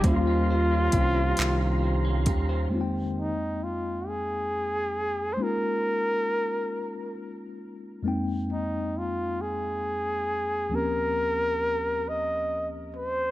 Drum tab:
HH |x-xx-x|------|------|------|
CP |---x--|------|------|------|
BD |o-o--o|------|------|------|

HH |------|
CP |------|
BD |------|